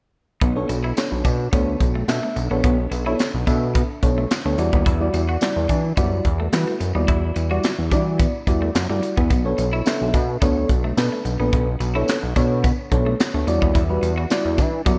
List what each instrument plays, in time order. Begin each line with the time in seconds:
0.41 analog synth bass B1, clean electric guitar B3, kick, closed hi-hat
0.56 fm electric piano B3 D4 A4 C#5
0.69 analog synth bass B1, muted clean electric guitar stroke, closed hi-hat, tambourine
0.84 clean electric guitar E4
0.97 fm electric piano B3 D4 A4 C#5, snare, clap, closed hi-hat, tambourine
1.12 analog synth bass B1
1.25 analog synth bass B2, clean electric guitar D4, kick, closed hi-hat, tambourine
1.52 analog synth bass D2, fm electric piano B3 D4 A4 C#5, clean electric guitar B3, kick, closed hi-hat, tambourine
1.80 analog synth bass B1, muted clean electric guitar stroke, kick, closed hi-hat, tambourine
1.95 clean electric guitar A3
2.08 analog synth bass B2, fm electric piano B3 D4 A4 E5, snare, clap, closed hi-hat, tambourine
2.23 clean electric guitar A3
2.36 analog synth bass B1, muted clean electric guitar stroke, closed hi-hat, tambourine
2.50 analog synth bass A#1, fm electric piano B3 D4 A4 C#5, clean electric guitar B3
2.64 analog synth bass B1, clean electric guitar B3, kick, closed hi-hat
2.91 analog synth bass B1, muted clean electric guitar stroke, closed hi-hat, tambourine
3.06 fm electric piano B3 D4 A4 C#5, clean electric guitar E4
3.19 snare, clap, closed hi-hat, tambourine
3.34 analog synth bass B1
3.47 analog synth bass B2, fm electric piano B3 D4 A4 E5, clean electric guitar D4, kick, closed hi-hat, tambourine
3.75 clean electric guitar B3, kick, closed hi-hat, tambourine
4.02 analog synth bass B1, fm electric piano B3 D4 A4 C#5, muted clean electric guitar stroke, kick, closed hi-hat, tambourine
4.18 clean electric guitar A3
4.31 snare, clap, closed hi-hat, tambourine
4.45 analog synth bass D2, clean electric guitar A3, fm electric piano B3 D4 A4 C#5
4.58 analog synth bass E2, fm electric piano G3 E4 F#4 D5, muted clean electric guitar stroke, closed hi-hat, tambourine
4.73 analog synth bass D#2, clean electric guitar B3, kick
4.86 analog synth bass E2, clean electric guitar E4, kick, closed hi-hat
5.00 fm electric piano G3 E4 F#4 D5
5.14 analog synth bass E2, muted clean electric guitar stroke, closed hi-hat, tambourine
5.29 clean electric guitar F#4
5.41 fm electric piano G3 E4 F#4 D5, snare, clap, closed hi-hat, tambourine
5.56 analog synth bass E2
5.69 analog synth bass E3, clean electric guitar D4, kick, closed hi-hat, tambourine
5.97 analog synth bass F#2, fm electric piano G3 E4 F#4 D5, clean electric guitar B3, kick, closed hi-hat, tambourine
6.25 analog synth bass E2, muted clean electric guitar stroke, kick, closed hi-hat
6.40 clean electric guitar A3
6.53 analog synth bass E3, fm electric piano G3 E4 F#4 B4, snare, clap, closed hi-hat, tambourine
6.68 clean electric guitar A3
6.80 analog synth bass F#2, muted clean electric guitar stroke, closed hi-hat, tambourine
6.95 analog synth bass D#2, fm electric piano G3 E4 F#4 D5, clean electric guitar B3
7.08 analog synth bass E2, clean electric guitar E4, kick, closed hi-hat
7.36 analog synth bass E2, muted clean electric guitar stroke, closed hi-hat, tambourine
7.51 fm electric piano G3 E4 F#4 D5, clean electric guitar F#4
7.63 snare, clap, closed hi-hat, tambourine
7.79 analog synth bass E2
7.91 analog synth bass E3, fm electric piano G3 E4 F#4 D5, clean electric guitar D4, kick, closed hi-hat, tambourine
8.19 clean electric guitar B3, kick, closed hi-hat, tambourine
8.47 analog synth bass E2, fm electric piano G3 E4 F#4 D5, muted clean electric guitar stroke, kick, closed hi-hat, tambourine
8.62 clean electric guitar A3
8.75 analog synth bass F#2, snare, clap, closed hi-hat, tambourine
8.89 analog synth bass G2, fm electric piano G3 E4 F#4 D5, clean electric guitar A3
9.03 muted clean electric guitar stroke, closed hi-hat, tambourine
9.17 analog synth bass E2, clean electric guitar B3, kick
9.30 analog synth bass B1, clean electric guitar B3, kick, closed hi-hat, tambourine
9.45 fm electric piano B3 D4 A4 C#5
9.58 analog synth bass B1, muted clean electric guitar stroke, closed hi-hat, tambourine
9.73 clean electric guitar E4
9.86 fm electric piano B3 D4 A4 E5, snare, clap, closed hi-hat, tambourine
10.01 analog synth bass B1
10.14 analog synth bass B2, clean electric guitar D4, kick, closed hi-hat, tambourine
10.41 analog synth bass D2, fm electric piano B3 D4 A4 C#5, clean electric guitar B3, kick, closed hi-hat, tambourine
10.69 analog synth bass B1, muted clean electric guitar stroke, kick, closed hi-hat, tambourine
10.84 clean electric guitar A3
10.97 analog synth bass B2, fm electric piano B3 D4 A4 B4, snare, clap, closed hi-hat, tambourine
11.12 clean electric guitar A3
11.25 analog synth bass B1, muted clean electric guitar stroke, closed hi-hat, tambourine
11.40 analog synth bass A#1, clean electric guitar B3, fm electric piano B3 D4 A4 B4
11.53 analog synth bass B1, clean electric guitar B3, kick, closed hi-hat
11.80 analog synth bass B1, muted clean electric guitar stroke, closed hi-hat, tambourine
11.95 fm electric piano B3 D4 A4 C#5, clean electric guitar E4
12.08 snare, clap, closed hi-hat, tambourine
12.23 analog synth bass B1
12.36 analog synth bass B2, fm electric piano B3 D4 A4 C#5, clean electric guitar D4, kick, closed hi-hat, tambourine
12.64 clean electric guitar B3, kick, closed hi-hat, tambourine
12.91 analog synth bass B1, fm electric piano B3 D4 A4 C#5, muted clean electric guitar stroke, kick, closed hi-hat
13.06 clean electric guitar A3
13.20 snare, clap, closed hi-hat, tambourine
13.34 analog synth bass D2, clean electric guitar A3, fm electric piano B3 D4 A4 C#5
13.47 analog synth bass E2, fm electric piano G3 E4 F#4 D5, muted clean electric guitar stroke, closed hi-hat, tambourine
13.62 analog synth bass D#2, clean electric guitar B3, kick
13.75 analog synth bass E2, clean electric guitar E4, kick, closed hi-hat, tambourine
13.89 fm electric piano G3 E4 F#4 B4
14.03 analog synth bass E2, muted clean electric guitar stroke, closed hi-hat, tambourine
14.18 clean electric guitar F#4
14.30 fm electric piano G3 E4 F#4 D5, snare, clap, closed hi-hat, tambourine
14.45 analog synth bass E2
14.58 analog synth bass E3, clean electric guitar D4, kick, closed hi-hat, tambourine
14.86 analog synth bass F#2, fm electric piano G3 E4 F#4 D5, clean electric guitar B3, kick, closed hi-hat, tambourine